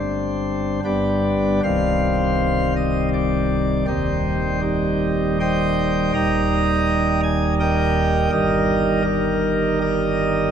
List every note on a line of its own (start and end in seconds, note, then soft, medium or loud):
0.00 0.80 G1 soft
0.00 0.80 G2 medium
0.00 0.80 G3 soft
0.00 0.80 C4 soft
0.00 0.80 D4 soft
0.00 0.80 C5 medium
0.84 1.60 G1 medium
0.84 1.60 G2 medium
0.84 1.60 G3 soft
0.84 1.60 B3 soft
0.84 1.60 D4 soft
0.84 1.60 G4 medium
0.84 1.60 B4 medium
0.84 1.60 D5 medium
1.63 3.84 C1 medium
1.63 3.85 C2 medium
1.63 3.84 D#3 soft
1.63 3.84 G3 medium
1.63 3.84 C4 medium
1.63 2.74 C5 medium
1.63 2.73 F5 loud
2.76 3.08 D#5 medium
3.13 3.85 D5 loud
3.87 6.11 D#1 medium
3.87 6.11 D#2 medium
3.87 6.11 D#3 soft
3.87 6.11 G3 medium
3.87 4.60 C4 medium
3.87 4.60 D#4 medium
3.87 4.60 G4 medium
3.87 4.59 C5 medium
4.62 5.38 C4 medium
4.62 5.38 D#4 medium
4.62 5.38 G4 medium
5.40 6.13 C5 medium
5.40 6.12 D#5 medium
5.40 6.12 G5 loud
6.14 8.28 D#1 medium
6.14 8.28 D#2 medium
6.14 8.28 D#3 medium
6.14 8.28 G3 medium
6.14 8.28 D#4 medium
6.14 7.20 D#5 medium
6.14 7.20 G5 medium
6.14 7.20 A#5 loud
7.23 7.54 G#5 loud
7.60 8.30 A#4 medium
7.60 8.30 D#5 medium
7.60 8.30 G5 loud
8.32 10.51 G1 medium
8.32 10.51 G2 medium
8.32 10.51 D#3 medium
8.32 10.51 G3 medium
8.32 9.02 D#4 medium
8.32 9.02 G4 medium
8.32 9.02 A#4 medium
8.32 9.03 D#5 loud
9.04 9.79 D#4 medium
9.04 9.79 G4 medium
9.04 9.79 A#4 loud
9.81 10.51 G4 medium
9.81 10.51 A#4 medium
9.81 10.51 D#5 loud